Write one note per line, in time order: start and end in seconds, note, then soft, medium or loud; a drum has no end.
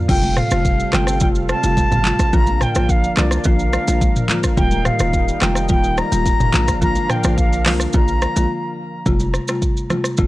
0.00 6.50 F5 medium
0.08 0.41 F1 loud
0.08 0.30 C3 medium
0.08 0.30 G3 medium
0.08 2.31 G3 medium
0.08 0.30 A3 medium
0.08 2.31 C4 medium
0.08 0.30 F4 loud
0.08 2.31 A4 medium
0.08 0.39 G5 loud
0.08 kick loud
0.08 crash medium
0.08 low conga medium
0.23 high conga medium
0.23 shaker soft
0.37 0.96 F5 medium
0.37 cross-stick medium
0.37 mid tom medium
0.37 shaker medium
0.51 0.83 F1 loud
0.51 0.90 C3 medium
0.51 0.90 G3 medium
0.51 0.90 A3 medium
0.51 0.90 F4 medium
0.51 cross-stick medium
0.51 shaker loud
0.65 kick medium
0.65 shaker medium
0.80 shaker soft
0.93 1.23 G1 medium
0.93 1.19 C3 medium
0.93 1.19 G3 medium
0.93 1.19 A3 medium
0.93 1.19 F4 medium
0.93 1.21 G5 medium
0.93 cross-stick medium
0.93 clap medium
0.93 high conga medium
0.93 low conga medium
0.93 shaker soft
1.07 cross-stick medium
1.07 shaker medium
1.20 1.54 F1 medium
1.20 1.60 C3 medium
1.20 1.60 G3 medium
1.20 1.60 A3 medium
1.20 1.60 F4 loud
1.20 1.28 G5 loud
1.20 kick loud
1.20 low conga medium
1.20 shaker medium
1.35 shaker soft
1.49 2.36 A5 loud
1.49 cross-stick loud
1.49 high conga medium
1.49 shaker medium
1.63 1.85 F1 medium
1.63 2.02 C3 medium
1.63 2.02 G3 medium
1.63 2.02 A3 medium
1.63 2.02 F4 medium
1.63 high conga medium
1.63 shaker medium
1.77 kick medium
1.77 high conga medium
1.77 shaker medium
1.92 2.13 G1 medium
1.92 mid tom medium
1.92 shaker medium
2.04 2.31 C3 medium
2.04 2.31 G3 medium
2.04 2.31 A3 medium
2.04 2.31 F4 medium
2.04 clap loud
2.04 high conga medium
2.04 low conga medium
2.04 shaker medium
2.19 2.30 A1 medium
2.19 kick medium
2.19 cross-stick medium
2.19 shaker loud
2.33 2.66 A#1 loud
2.33 2.54 D3 medium
2.33 4.55 F3 medium
2.33 2.55 F3 medium
2.33 2.55 A#3 medium
2.33 4.55 D4 medium
2.33 2.55 F4 loud
2.33 6.50 A#4 medium
2.33 2.64 A#5 loud
2.33 kick loud
2.33 low conga medium
2.33 shaker medium
2.47 high conga medium
2.47 shaker soft
2.61 2.92 G5 loud
2.61 cross-stick medium
2.61 mid tom medium
2.61 shaker medium
2.75 3.07 A#1 medium
2.75 3.14 D3 medium
2.75 3.14 F3 medium
2.75 3.14 A#3 medium
2.75 3.14 F4 medium
2.75 cross-stick medium
2.75 shaker loud
2.89 3.19 F5 loud
2.89 kick medium
2.89 shaker medium
3.04 shaker soft
3.17 3.39 C2 loud
3.17 3.43 D3 medium
3.17 3.43 F3 medium
3.17 3.43 A#3 medium
3.17 3.43 F4 medium
3.17 3.47 D5 medium
3.17 cross-stick medium
3.17 clap medium
3.17 high conga medium
3.17 low conga medium
3.17 shaker soft
3.31 cross-stick medium
3.31 shaker loud
3.44 3.78 A#1 medium
3.44 3.84 D3 medium
3.44 3.84 F3 medium
3.44 3.84 A#3 medium
3.44 3.85 F4 loud
3.44 4.30 F5 loud
3.44 kick loud
3.44 low conga medium
3.44 shaker medium
3.59 shaker soft
3.73 cross-stick loud
3.73 high conga medium
3.73 shaker medium
3.88 4.09 A#1 medium
3.88 4.26 D3 medium
3.88 4.26 F3 medium
3.88 4.26 A#3 medium
3.88 4.26 F4 medium
3.88 high conga medium
3.88 shaker medium
4.01 kick medium
4.01 high conga medium
4.01 shaker medium
4.16 mid tom medium
4.16 shaker medium
4.29 4.55 D3 medium
4.29 4.55 F3 medium
4.29 4.55 A#3 medium
4.29 4.55 F4 medium
4.29 clap loud
4.29 high conga medium
4.29 low conga medium
4.29 shaker medium
4.43 kick medium
4.43 cross-stick medium
4.43 shaker loud
4.57 4.90 D#1 loud
4.57 4.79 D#3 medium
4.57 4.79 G3 medium
4.57 6.52 G3 medium
4.57 4.79 A#3 medium
4.57 6.52 D#4 medium
4.57 4.79 F4 loud
4.57 4.87 G5 loud
4.57 kick loud
4.57 low conga medium
4.57 shaker medium
4.71 high conga medium
4.71 shaker medium
4.85 5.43 F5 loud
4.85 cross-stick loud
4.85 mid tom loud
4.85 shaker medium
4.99 5.32 D#1 loud
4.99 5.38 D#3 medium
4.99 5.38 G3 medium
4.99 5.38 A#3 medium
4.99 5.39 F4 medium
4.99 cross-stick medium
4.99 shaker medium
5.13 kick medium
5.13 shaker medium
5.28 shaker soft
5.41 5.71 F1 medium
5.41 5.67 D#3 medium
5.41 5.67 G3 medium
5.41 5.67 A#3 medium
5.41 5.68 F4 medium
5.41 5.69 G5 medium
5.41 cross-stick medium
5.41 clap medium
5.41 high conga medium
5.41 low conga medium
5.41 shaker soft
5.55 cross-stick medium
5.55 shaker medium
5.69 6.02 D#1 medium
5.69 6.09 D#3 medium
5.69 6.09 G3 medium
5.69 6.09 A#3 medium
5.69 6.09 F4 loud
5.69 5.99 G5 loud
5.69 kick loud
5.69 low conga medium
5.69 shaker medium
5.84 shaker soft
5.98 6.82 A#5 loud
5.98 cross-stick medium
5.98 high conga medium
5.98 shaker medium
6.12 6.34 D#1 medium
6.12 6.50 D#3 medium
6.12 6.50 G3 medium
6.12 6.51 A#3 medium
6.12 6.51 F4 medium
6.12 high conga medium
6.12 shaker medium
6.26 kick medium
6.26 high conga medium
6.26 shaker medium
6.40 6.51 F1 medium
6.40 mid tom medium
6.40 shaker medium
6.53 6.97 A#1 loud
6.53 6.79 D3 medium
6.53 6.80 F3 medium
6.53 9.04 F3 medium
6.53 6.80 A#3 medium
6.53 9.04 D4 medium
6.53 6.80 F4 medium
6.53 9.04 A#4 medium
6.53 9.04 F5 loud
6.53 clap loud
6.53 high conga medium
6.53 low conga medium
6.53 shaker medium
6.68 kick medium
6.68 cross-stick medium
6.68 shaker loud
6.82 7.03 D3 medium
6.82 7.03 F3 medium
6.82 7.03 A#3 medium
6.82 7.03 F4 loud
6.82 7.12 A#5 loud
6.82 kick loud
6.82 low conga medium
6.82 shaker medium
6.95 high conga medium
6.95 shaker medium
7.10 7.38 G5 loud
7.10 cross-stick loud
7.10 mid tom medium
7.10 shaker medium
7.24 7.68 A#1 loud
7.24 7.62 D3 medium
7.24 7.62 F3 medium
7.24 7.63 A#3 medium
7.24 7.63 F4 medium
7.24 cross-stick medium
7.24 shaker loud
7.38 7.64 F5 medium
7.38 kick medium
7.38 shaker medium
7.53 shaker soft
7.66 7.87 C2 loud
7.66 7.92 D3 medium
7.66 7.92 F3 medium
7.66 7.92 A#3 medium
7.66 7.92 F4 medium
7.66 7.73 F5 medium
7.66 cross-stick medium
7.66 clap medium
7.66 open hi-hat medium
7.66 high conga medium
7.66 low conga medium
7.66 shaker soft
7.80 cross-stick medium
7.80 shaker loud
7.93 8.27 A#1 loud
7.93 8.33 D3 medium
7.93 8.33 F3 medium
7.93 8.33 A#3 medium
7.93 8.33 F4 loud
7.93 8.74 A#5 loud
7.93 kick loud
7.93 low conga medium
7.93 shaker medium
8.08 shaker soft
8.22 cross-stick loud
8.22 high conga medium
8.22 shaker medium
8.36 8.47 A#1 loud
8.36 8.50 D3 medium
8.36 8.50 F3 medium
8.36 8.50 A#3 medium
8.36 8.50 F4 medium
8.36 high conga medium
8.36 shaker medium
9.06 9.39 F1 loud
9.06 9.27 C3 medium
9.06 9.27 G3 medium
9.06 9.27 A3 medium
9.06 9.28 F4 loud
9.06 kick loud
9.06 low conga medium
9.06 shaker medium
9.20 high conga medium
9.20 shaker soft
9.34 cross-stick medium
9.34 shaker medium
9.48 9.87 C3 medium
9.48 9.87 G3 medium
9.48 9.87 A3 medium
9.48 9.87 F4 medium
9.48 cross-stick medium
9.48 shaker medium
9.62 kick medium
9.62 shaker medium
9.77 shaker soft
9.90 10.16 C3 medium
9.90 10.16 G3 medium
9.90 10.16 A3 medium
9.90 10.16 F4 medium
9.90 cross-stick medium
9.90 high conga medium
9.90 low conga medium
9.90 shaker soft
10.04 cross-stick medium
10.04 shaker medium
10.17 10.27 G1 medium
10.17 10.27 C3 medium
10.17 10.27 G3 medium
10.17 10.27 A3 medium
10.17 10.27 F4 loud
10.17 kick loud
10.17 shaker medium